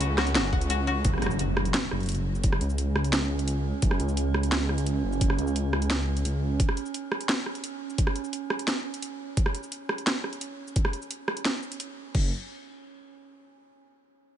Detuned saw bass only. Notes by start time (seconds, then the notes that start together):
Already playing: C#2
0.36 F#1
0.53 C#2
1.05 F#1
1.92 F#1
2.44 F#1
2.61 C#2
3.83 F#1
4.00 C#2
5.04 F#1
5.21 F#1
5.39 C#2
6.25 C#2
12.15 F#1